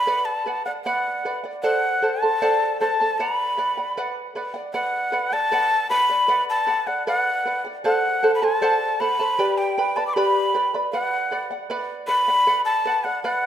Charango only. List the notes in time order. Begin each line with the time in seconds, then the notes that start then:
0.07 B4 D5 F#5
0.46 B4 D5 F#5
0.66 D5 F#5
0.86 B4 D5 F#5
1.25 B4 D5 F#5
1.44 D5 F#5
1.63 A4 C5 D5 F#5 A5
2.02 A4 C5 F#5 A5
2.22 A4 C5 A5
2.42 A4 C5 D5 F#5 A5
2.81 A4 C5 F#5 A5
3.00 A4 C5 A5
3.19 B4 D5 F#5
3.57 B4 D5 F#5
3.77 D5 F#5
3.97 B4 D5 F#5
4.35 B4 D5 F#5
4.54 D5 F#5
4.74 B4 D5 F#5
5.12 B4 D5 F#5
5.32 D5 F#5
5.51 B4 D5 F#5
5.90 B4 D5 F#5
6.10 D5 F#5
6.28 B4 D5 F#5
6.67 B4 D5 F#5
6.87 D5 F#5
7.07 B4 D5 F#5
7.45 B4 D5 F#5
7.65 D5 F#5
7.84 A4 C5 D5 F#5 A5
8.23 A4 C5 F#5 A5
8.42 A4 C5 A5
8.61 A4 C5 D5 F#5 A5
9.00 A4 C5 F#5 A5
9.19 A4 C5 A5
9.39 G4 B4 D5 G5 B5
9.78 B4 D5 G5 B5
9.97 B4 D5 B5
10.16 G4 B4 D5 G5 B5
10.54 B4 D5 G5 B5
10.74 B4 D5 B5
10.93 B4 D5 F#5
11.31 B4 D5 F#5
11.51 D5 F#5
11.70 B4 D5 F#5
12.08 B4 D5 F#5
12.28 D5 F#5
12.47 B4 D5 F#5
12.85 B4 D5 F#5
13.05 D5 F#5
13.24 B4 D5 F#5